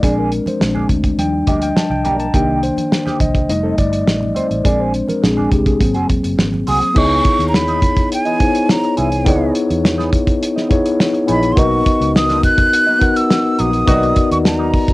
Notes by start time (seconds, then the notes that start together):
Already playing: D5
0.02 A#1 G#3 A#3 C4 D4 G#4, kick, closed hi-hat
0.19 A#4
0.32 closed hi-hat, muted conga
0.46 C5, muted clean electric guitar stroke, muted fingered electric bass stroke, closed hi-hat, high conga
0.60 A#1 G#3 C4 D4, muted clean electric guitar stroke, snare
0.74 A#3 D4 G#4, low conga
0.89 D2, muted clean electric guitar stroke, kick, closed hi-hat, muted conga
1.04 muted clean electric guitar stroke, kick, closed hi-hat
1.18 D#2 F3 G3 D4 G5, closed hi-hat
1.33 muted clean electric guitar stroke
1.47 D2 A#3 D4 G4 D#5, kick, closed hi-hat
1.62 G5, muted clean electric guitar stroke, closed hi-hat
1.76 A5, muted clean electric guitar stroke, snare, muted conga, high conga
1.90 C2 G5, muted clean electric guitar stroke, high conga
2.04 B1 A#3 D4 G4 A#5, closed hi-hat, low conga
2.19 A5, muted clean electric guitar stroke, closed hi-hat
2.34 C2 D#3 A#3 D4 D#4 G4 G5, kick, closed hi-hat, muted conga
2.63 C5, closed hi-hat
2.77 muted clean electric guitar stroke, muted fingered electric bass stroke, closed hi-hat, high conga
2.92 muted clean electric guitar stroke, snare, muted conga
3.06 A#3 D#4 G4, snare, low conga
3.20 C2 D#5, muted clean electric guitar stroke, kick, closed hi-hat, muted conga, high conga
3.34 muted clean electric guitar stroke, kick, closed hi-hat
3.49 F1 G3 A3 D#4 D#5, muted clean electric guitar stroke, closed hi-hat, muted conga
3.63 C4 D#4 A4
3.78 G1 D5, kick, closed hi-hat, muted conga
3.92 muted clean electric guitar stroke, closed hi-hat
4.07 A1, snare, muted conga, high conga
4.21 muted clean electric guitar stroke, high conga
4.35 C4 D#4 C5, closed hi-hat, low conga
4.50 A1, muted clean electric guitar stroke, closed hi-hat
4.64 A#1 G#3 A#3 C4 D4 G#4 D5, kick, closed hi-hat, muted conga
4.80 C5
4.94 closed hi-hat, muted conga
5.08 A#4, muted clean electric guitar stroke, muted fingered electric bass stroke, closed hi-hat, high conga
5.22 A#1 G#3 C4 D4 G#4, muted clean electric guitar stroke, snare
5.37 A#3 D4 G#4, low conga
5.52 C2 G4, muted clean electric guitar stroke, kick, closed hi-hat, muted conga
5.66 G#4, muted clean electric guitar stroke, kick, closed hi-hat
5.80 G#1 F#3 A#3 C4, muted clean electric guitar stroke, kick, closed hi-hat
5.94 F#1 C4 F#4 G#4, closed hi-hat
6.09 E1, kick, closed hi-hat, muted conga
6.24 F#1, muted clean electric guitar stroke, closed hi-hat
6.38 G#1, muted clean electric guitar stroke, snare, muted conga, high conga
6.52 muted clean electric guitar stroke, high conga
6.67 C2 C4 F#4 G#4 D#6, open hi-hat, muted conga, low conga
6.82 muted clean electric guitar stroke, closed hi-hat, high conga
6.94 C#2 E3 B3 D#4 E4 G#4 C#5 C#6, kick, crash
7.25 kick, closed hi-hat
7.39 D#2, muted clean electric guitar stroke, closed hi-hat
7.49 A#5
7.54 B5, muted clean electric guitar stroke, snare
7.68 E3 B3 D#4, closed hi-hat
7.82 muted clean electric guitar stroke, kick, closed hi-hat
7.96 muted clean electric guitar stroke, kick, closed hi-hat
8.11 G#5, muted clean electric guitar stroke, closed hi-hat
8.25 E3 B3 D#4, closed hi-hat
8.39 B3 D#4 E4 G#4 C5, kick, closed hi-hat
8.48 C#5
8.54 muted clean electric guitar stroke, closed hi-hat
8.69 A#5, snare
8.83 muted clean electric guitar stroke, closed hi-hat
8.97 C2 E3 B3 E4 G#5, closed hi-hat
9.12 muted clean electric guitar stroke, closed hi-hat
9.24 C#2 D#3 A#3 B3 D4 D#4 E4 G#4 C#5, kick, closed hi-hat
9.37 E3 B3 D#4
9.55 closed hi-hat
9.69 E2, muted clean electric guitar stroke, closed hi-hat
9.84 muted clean electric guitar stroke, snare
9.98 E3 B3 D#4, snare
10.13 muted clean electric guitar stroke, kick, closed hi-hat
10.27 muted clean electric guitar stroke, kick, closed hi-hat
10.41 muted clean electric guitar stroke, closed hi-hat
10.56 E3 B3 D#4, snare
10.69 B3 D#4 E4 G#4 C#5, muted clean electric guitar stroke, kick, closed hi-hat
10.85 muted clean electric guitar stroke, closed hi-hat
10.99 muted clean electric guitar stroke, snare
11.13 muted clean electric guitar stroke, closed hi-hat
11.26 A#1 E3 B3 D#4 E4 G#4 C#5, closed hi-hat
11.31 B5
11.42 muted clean electric guitar stroke, closed hi-hat
11.52 B3 C6
11.57 B1 F#3 A#3 D#4 F#4 A#4 D#5 C#6, kick, closed hi-hat
11.86 kick, closed hi-hat
12.01 C#2, muted clean electric guitar stroke, closed hi-hat
12.15 D#6, muted clean electric guitar stroke, snare
12.29 F#3 A#3 D#4, snare, closed hi-hat
12.44 F#6, muted clean electric guitar stroke, kick, closed hi-hat
12.58 muted clean electric guitar stroke, kick, closed hi-hat
12.72 muted clean electric guitar stroke, closed hi-hat
12.86 F#3 A#3 D#4
12.99 B3 D#4 F#4 A#4 F#5, muted clean electric guitar stroke, kick, closed hi-hat
13.16 E6, muted clean electric guitar stroke, closed hi-hat
13.30 snare
13.44 muted clean electric guitar stroke
13.58 A#1 F#3 A#3 F#4 D#6, closed hi-hat
13.73 muted clean electric guitar stroke, closed hi-hat
13.86 B1 D#3 F#3 A#3 B3 D#4 F#4 A#4 D5, kick, closed hi-hat
13.96 D#5
14.03 closed hi-hat
14.16 kick, closed hi-hat
14.31 D#2 C#6, muted clean electric guitar stroke, closed hi-hat
14.45 A#5, muted clean electric guitar stroke, snare
14.59 F#3 A#3 D#4
14.74 kick, open hi-hat
14.88 muted clean electric guitar stroke, kick, closed hi-hat